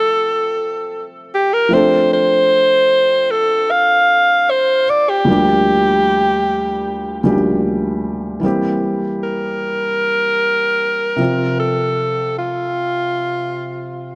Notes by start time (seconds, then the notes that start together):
Already playing: F3 A3 C4 A4 E5
1.34 G4
1.53 A#4
1.69 F3 A3 C4
1.74 D4 A4 C5
2.13 C5
3.31 A4
3.71 F5
4.50 C5
4.90 D5
5.09 G4
5.24 D2 F3 G3 A#3
5.29 D4 G4
7.23 D2 F3 G3 A#3 C#4 G4
7.32 D4
8.40 E3 G3 A#3
8.44 C4 G4
9.23 A#4
11.16 C3 F3
11.21 C4 F4
11.59 A4
12.38 F4